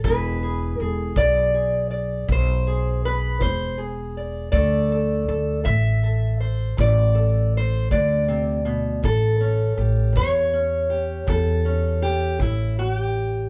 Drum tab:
BD |o--o--o--o--|o--o--o--o--|o--o--o--o--|